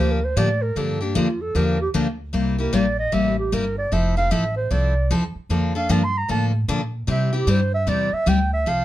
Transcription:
0.00 0.35 D2 medium
0.00 0.19 D3 medium
0.00 0.19 F3 medium
0.00 0.19 A#3 medium
0.00 0.19 D4 medium
0.00 0.19 G4 medium
0.00 0.13 C5 medium
0.12 0.26 A#4 medium
0.25 0.39 C5 medium
0.36 0.75 A2 medium
0.36 0.48 D3 medium
0.36 0.48 F3 medium
0.36 0.48 A#3 medium
0.36 0.48 D4 medium
0.36 0.48 G4 loud
0.36 0.64 D5 medium
0.62 0.79 A#4 medium
0.76 1.14 G2 medium
0.76 0.98 D3 medium
0.76 0.98 F3 medium
0.76 0.98 A#3 medium
0.76 0.98 D4 medium
0.76 0.98 G4 medium
0.76 1.02 A4 medium
1.01 1.14 A#3 soft
1.01 1.15 D4 medium
1.01 1.18 D4 soft
1.01 1.15 G4 medium
1.15 1.54 F2 medium
1.15 1.27 D3 medium
1.15 1.27 F3 medium
1.15 1.27 A#3 medium
1.15 1.27 D4 medium
1.15 1.43 F4 medium
1.15 1.27 G4 medium
1.42 1.58 A4 medium
1.55 1.93 E2 medium
1.55 1.77 D3 medium
1.55 1.77 F3 medium
1.55 1.77 A#3 medium
1.55 1.77 D4 medium
1.55 1.77 G4 medium
1.55 1.81 A#4 medium
1.81 1.90 G4 medium
1.94 2.33 D2 medium
1.94 2.06 D3 medium
1.94 2.06 F3 medium
1.94 2.06 A#3 medium
1.94 2.06 D4 medium
1.94 2.06 G4 loud
2.33 2.73 C2 medium
2.33 2.55 C3 medium
2.33 2.55 G3 medium
2.33 2.56 A#3 medium
2.33 2.56 E4 medium
2.33 2.56 G4 medium
2.58 2.72 A#3 soft
2.58 2.72 E4 medium
2.58 2.72 G4 medium
2.58 2.76 A#4 medium
2.73 3.12 A#1 medium
2.73 2.85 C3 medium
2.73 2.85 G3 medium
2.73 2.85 A#3 medium
2.73 2.85 E4 medium
2.73 2.85 G4 medium
2.73 2.99 D5 medium
2.99 3.15 D#5 loud
3.12 3.51 A1 medium
3.12 3.34 C3 medium
3.12 3.34 G3 medium
3.12 3.34 A#3 medium
3.12 3.34 E4 medium
3.12 3.35 G4 medium
3.12 3.39 E5 loud
3.39 3.55 G4 medium
3.52 3.91 G1 medium
3.52 3.64 C3 medium
3.52 3.64 G3 medium
3.52 3.64 A#3 medium
3.52 3.64 E4 medium
3.52 3.64 G4 medium
3.52 3.78 A#4 medium
3.78 3.95 D5 medium
3.92 4.30 F1 medium
3.92 4.14 F3 medium
3.92 4.14 C4 medium
3.92 4.14 E4 medium
3.92 4.14 A4 medium
3.92 4.17 E5 medium
4.17 4.30 C4 soft
4.17 4.31 E4 medium
4.17 4.30 A4 medium
4.17 4.33 F5 loud
4.31 4.70 A1 medium
4.31 4.43 F3 medium
4.31 4.43 C4 medium
4.31 4.43 E4 loud
4.31 4.43 A4 medium
4.31 4.56 E5 medium
4.57 4.73 C5 medium
4.71 5.09 C2 medium
4.71 4.93 F3 medium
4.71 4.93 C4 medium
4.71 4.93 E4 medium
4.71 4.93 A4 medium
4.71 5.11 D5 medium
5.10 5.34 E2 medium
5.10 5.22 F3 medium
5.10 5.22 C4 medium
5.10 5.23 E4 medium
5.10 5.23 A4 medium
5.35 muted upright bass stroke soft
5.49 5.88 F2 medium
5.49 5.72 D3 medium
5.49 5.72 F3 medium
5.49 5.72 A#3 medium
5.49 5.72 D4 medium
5.49 5.72 A4 medium
5.75 5.88 A#3 soft
5.75 5.89 D4 medium
5.75 5.89 A4 medium
5.75 5.93 F5 medium
5.89 6.28 G2 medium
5.89 6.01 D3 medium
5.89 6.01 F3 medium
5.89 6.01 A#3 medium
5.89 6.01 D4 medium
5.89 6.01 A4 medium
5.89 6.06 A5 medium
6.04 6.20 C6 loud
6.18 6.30 A#5 medium
6.28 6.68 A2 medium
6.28 6.51 D3 medium
6.28 6.51 F3 medium
6.28 6.51 A#3 medium
6.28 6.51 D4 medium
6.28 6.51 A4 medium
6.28 6.46 A5 loud
6.68 7.07 A#2 medium
6.68 6.80 D3 medium
6.68 6.80 F3 medium
6.68 6.80 A#3 medium
6.68 6.81 D4 medium
6.68 6.80 A4 loud
7.07 7.29 C3 medium
7.07 7.46 C3 medium
7.07 7.30 G3 medium
7.07 7.30 C4 medium
7.07 7.30 E4 medium
7.07 7.30 G4 medium
7.07 7.33 E5 medium
7.33 7.47 C4 medium
7.33 7.47 E4 medium
7.33 7.47 G4 medium
7.33 7.52 G4 medium
7.47 7.86 G2 loud
7.47 7.59 C3 medium
7.47 7.59 G3 medium
7.47 7.59 C4 medium
7.47 7.59 E4 medium
7.47 7.59 G4 loud
7.47 7.74 C5 medium
7.75 7.91 E5 loud
7.87 8.10 E2 medium
7.87 8.09 C3 medium
7.87 8.09 G3 medium
7.87 8.09 C4 medium
7.87 8.09 E4 medium
7.87 8.09 G4 medium
7.87 8.15 D5 medium
8.12 8.30 E5 loud
8.12 muted upright bass stroke soft
8.26 8.65 D2 medium
8.26 8.38 C3 medium
8.26 8.38 G3 medium
8.26 8.38 C4 medium
8.26 8.39 E4 medium
8.26 8.39 G4 loud
8.26 8.53 G5 loud
8.54 8.70 E5 loud
8.66 8.85 C2 medium
8.66 8.85 F3 medium
8.66 8.85 C4 medium
8.66 8.85 F4 medium
8.66 8.85 A4 medium
8.66 8.85 F5 loud

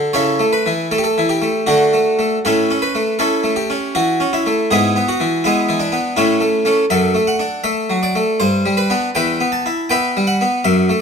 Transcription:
0.00 0.14 D3 soft
0.13 0.39 C#3 medium
0.13 0.50 E4 medium
0.13 0.50 A4 medium
0.13 0.47 C#5 medium
0.39 0.67 A3 soft
0.53 0.85 B4 medium
0.66 0.93 E3 soft
0.91 1.18 A3 soft
0.91 0.98 A4 medium
0.98 1.05 G4 medium
1.04 1.29 A4 medium
1.18 1.44 E3 soft
1.29 1.62 G4 medium
1.42 1.67 A3 soft
1.67 1.92 D3 medium
1.67 1.92 A3 medium
1.67 2.41 D4 medium
1.67 2.44 F#4 medium
1.93 2.18 A3 soft
2.19 2.37 A3 soft
2.45 2.69 A2 soft
2.45 2.69 C#4 medium
2.45 2.80 E4 medium
2.45 2.77 A4 medium
2.71 2.96 C#4 soft
2.82 3.14 B4 medium
2.95 3.21 A3 soft
3.19 3.54 C#4 medium
3.19 3.54 E4 medium
3.19 3.51 A4 medium
3.44 3.70 A3 soft
3.56 3.94 G4 medium
3.70 3.96 C#4 soft
3.95 4.22 E3 soft
3.95 4.33 F#4 medium
4.20 4.47 C#4 soft
4.33 4.71 E4 medium
4.46 4.71 A3 soft
4.71 4.95 G#2 medium
4.71 4.95 B3 medium
4.71 5.06 E4 medium
4.71 5.08 G#4 medium
4.96 5.22 B3 soft
5.08 5.45 F#4 medium
5.20 5.46 E3 soft
5.44 5.79 G#3 medium
5.44 5.79 B3 medium
5.44 5.81 E4 medium
5.69 5.94 E3 soft
5.80 6.17 D4 medium
5.92 6.17 B3 soft
6.16 6.41 A2 medium
6.16 6.39 A3 medium
6.16 6.65 C#4 medium
6.16 6.79 E4 medium
6.40 6.64 A3 soft
6.65 6.83 A3 soft
6.65 6.84 C#4 soft
6.90 7.14 F#2 medium
6.90 7.25 A4 medium
6.90 7.22 E5 loud
7.15 7.41 A3 medium
7.27 7.59 F#5 medium
7.39 7.66 D4 soft
7.64 7.91 A3 soft
7.64 7.96 E5 medium
7.90 8.16 F#3 soft
8.03 8.40 D5 medium
8.15 8.40 A3 soft
8.40 8.64 G2 medium
8.40 8.77 C5 medium
8.66 8.92 G3 soft
8.77 9.15 B4 medium
8.90 9.08 B3 soft
8.90 9.08 D4 soft
9.15 9.40 E2 medium
9.15 9.51 B4 medium
9.15 9.51 E5 medium
9.15 9.53 G5 medium
9.40 9.66 B3 soft
9.52 9.84 A5 medium
9.66 9.92 E4 soft
9.90 10.17 B3 soft
9.90 10.26 B4 medium
9.90 10.26 E5 medium
9.90 10.28 G5 medium
10.17 10.42 G3 soft
10.27 10.59 F#5 medium
10.41 10.66 B3 soft
10.64 10.89 F#2 medium
10.64 11.01 E5 loud
10.89 11.01 A3 soft

